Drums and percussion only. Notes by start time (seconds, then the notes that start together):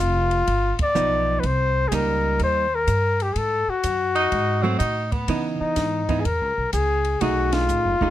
0.31 ride
0.47 kick, ride
0.79 kick, ride
0.95 hi-hat pedal
1.43 kick, ride
1.92 kick, hi-hat pedal, ride
2.39 kick, ride
2.87 kick, hi-hat pedal, ride
3.20 ride
3.36 kick, ride
3.83 kick, hi-hat pedal, ride
4.16 ride
4.32 kick, ride
4.80 kick, hi-hat pedal, ride
5.12 kick, ride
5.28 kick, ride
5.76 kick, snare, hi-hat pedal, ride
6.09 kick, ride
6.25 kick, ride
6.73 kick, hi-hat pedal, ride
7.05 ride
7.21 kick, ride
7.52 snare, ride
7.69 hi-hat pedal
8.01 kick